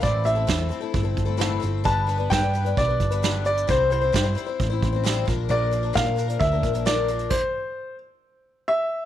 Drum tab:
CC |----------------|----------------|----------------|----------------|
HH |x-x-x-x-x-x-x-x-|x-x-x-xxx-xxx-xx|x-x-x-x-x-x-x-x-|x-x-x-xxx-xxx-xx|
SD |----o-------o---|----o-------o---|----o-------o---|----o-------o---|
BD |o---o---o-o-----|o---o---o-o-----|o---o---o-o---o-|----o---o-o-----|

CC |x---------------|
HH |----------------|
SD |----------------|
BD |o---------------|